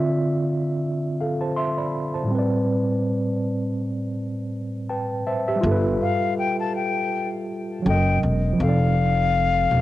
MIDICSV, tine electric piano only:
0, 0, Header, 1, 2, 480
1, 0, Start_track
1, 0, Tempo, 740741
1, 1729, Time_signature, 4, 2, 24, 8
1, 6359, End_track
2, 0, Start_track
2, 0, Title_t, "Tine electric piano"
2, 0, Program_c, 0, 4
2, 0, Control_c, 0, 64, 127
2, 0, Note_on_c, 0, 50, 70
2, 0, Note_on_c, 0, 60, 60
2, 0, Note_on_c, 0, 65, 59
2, 0, Note_on_c, 0, 74, 66
2, 0, Note_on_c, 0, 76, 80
2, 780, Note_off_c, 0, 76, 0
2, 781, Note_on_c, 0, 77, 53
2, 785, Note_on_c, 0, 69, 46
2, 906, Note_off_c, 0, 77, 0
2, 908, Note_off_c, 0, 69, 0
2, 912, Note_on_c, 0, 81, 61
2, 915, Note_on_c, 0, 72, 53
2, 1007, Note_off_c, 0, 81, 0
2, 1008, Note_off_c, 0, 72, 0
2, 1014, Note_on_c, 0, 84, 70
2, 1020, Note_on_c, 0, 76, 57
2, 1142, Note_off_c, 0, 84, 0
2, 1145, Note_off_c, 0, 76, 0
2, 1153, Note_off_c, 0, 74, 0
2, 1153, Note_on_c, 0, 74, 49
2, 1153, Note_on_c, 0, 83, 58
2, 1378, Note_off_c, 0, 74, 0
2, 1378, Note_off_c, 0, 83, 0
2, 1388, Note_on_c, 0, 81, 54
2, 1394, Note_on_c, 0, 72, 45
2, 1442, Note_off_c, 0, 50, 0
2, 1448, Note_on_c, 0, 45, 66
2, 1459, Note_off_c, 0, 60, 0
2, 1472, Note_on_c, 0, 55, 61
2, 1476, Note_off_c, 0, 65, 0
2, 1496, Control_c, 0, 64, 0
2, 1497, Note_on_c, 0, 60, 66
2, 1522, Note_on_c, 0, 71, 62
2, 1546, Note_on_c, 0, 74, 73
2, 1595, Control_c, 0, 64, 127
2, 1615, Note_off_c, 0, 81, 0
2, 1618, Note_off_c, 0, 72, 0
2, 3159, Note_off_c, 0, 71, 0
2, 3172, Note_off_c, 0, 74, 0
2, 3172, Note_on_c, 0, 81, 62
2, 3173, Note_on_c, 0, 79, 54
2, 3177, Note_on_c, 0, 71, 47
2, 3362, Note_off_c, 0, 45, 0
2, 3374, Note_off_c, 0, 55, 0
2, 3387, Note_off_c, 0, 60, 0
2, 3394, Note_off_c, 0, 81, 0
2, 3399, Note_off_c, 0, 79, 0
2, 3401, Note_off_c, 0, 71, 0
2, 3413, Note_on_c, 0, 76, 66
2, 3414, Note_on_c, 0, 81, 61
2, 3417, Note_on_c, 0, 72, 53
2, 3542, Note_off_c, 0, 81, 0
2, 3543, Note_off_c, 0, 72, 0
2, 3543, Note_off_c, 0, 76, 0
2, 3551, Note_on_c, 0, 76, 62
2, 3553, Note_on_c, 0, 67, 57
2, 3602, Note_on_c, 0, 55, 77
2, 3634, Note_on_c, 0, 65, 75
2, 3657, Control_c, 0, 64, 0
2, 3669, Note_on_c, 0, 69, 71
2, 3701, Note_on_c, 0, 71, 92
2, 3775, Control_c, 0, 64, 127
2, 3777, Note_off_c, 0, 76, 0
2, 3778, Note_off_c, 0, 67, 0
2, 5039, Note_off_c, 0, 55, 0
2, 5056, Note_off_c, 0, 65, 0
2, 5068, Note_on_c, 0, 54, 67
2, 5073, Note_off_c, 0, 69, 0
2, 5086, Note_on_c, 0, 61, 54
2, 5089, Note_off_c, 0, 71, 0
2, 5098, Control_c, 0, 64, 0
2, 5106, Note_on_c, 0, 69, 46
2, 5121, Note_on_c, 0, 75, 69
2, 5145, Note_off_c, 0, 69, 0
2, 5145, Note_on_c, 0, 70, 58
2, 5194, Control_c, 0, 64, 127
2, 5528, Note_on_c, 0, 53, 70
2, 5558, Note_off_c, 0, 54, 0
2, 5563, Note_on_c, 0, 60, 60
2, 5567, Note_off_c, 0, 61, 0
2, 5578, Control_c, 0, 64, 0
2, 5585, Note_off_c, 0, 75, 0
2, 5595, Note_on_c, 0, 69, 62
2, 5597, Note_off_c, 0, 70, 0
2, 5630, Note_on_c, 0, 74, 72
2, 5702, Control_c, 0, 64, 127
2, 6359, Note_off_c, 0, 53, 0
2, 6359, Note_off_c, 0, 60, 0
2, 6359, Note_off_c, 0, 69, 0
2, 6359, Note_off_c, 0, 74, 0
2, 6359, End_track
0, 0, End_of_file